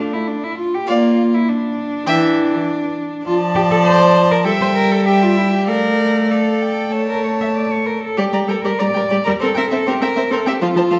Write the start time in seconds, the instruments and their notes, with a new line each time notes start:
Already playing: viola A3, cello D4
0.13 cello E4
0.28 cello D4
0.44 cello E4
0.58 cello F4
0.74 cello G4
0.87 viola A#3, cello F4, violin D5 F5
1.34 cello E4
1.48 cello D4
2.06 viola E3, violin E5 G5
3.25 viola F3, cello F4, violin D5 A5
3.55 cello G4
3.71 cello A4
3.85 cello C5
4.31 cello A#4
4.45 viola G3, cello A4, violin E5 G5
4.61 cello C5
4.75 cello A#4
4.92 cello A4
5.05 cello G4, violin E5 G5
5.22 cello F4
5.37 cello E4
5.54 cello G4
5.67 viola A3, cello A#4, violin D5 F5
6.30 cello A4, violin D5 F5
6.62 violin G5
6.92 viola A3, violin C#5 A5
7.09 cello A#4
7.24 cello C#5
7.41 cello E5
7.55 cello D5
7.72 cello C#5
7.86 cello A#4
8.03 cello A4
8.17 viola G3, cello G4, violin G4 D5
8.33 viola G3, violin D5 A#5
8.48 viola G3, cello A4, violin A#4 G5
8.64 viola G3, violin G4 D5, cello A#4
8.79 viola G3, cello D5, violin D5 A#5
8.94 viola G3, violin A#4 G5
9.10 viola G3, violin G4 D5
9.24 viola G3, cello A#4, violin D5 A#5
9.40 viola C4, cello A4, violin A#4 C5
9.54 viola C4, cello A#4, violin E5 G5
9.70 viola C4, cello A4, violin C5 E5
9.86 viola C4, cello G4, violin A#4 C5
10.01 viola C4, cello A#4, violin E5 G5
10.16 viola C4, violin C5 E5
10.30 viola C4, cello A4, violin A#4 C5
10.46 viola C4, cello G4, violin E5 G5
10.61 viola F3, cello F4, violin F4 C5
10.76 viola F3, violin C5 A5
10.91 viola F3, violin A4 F5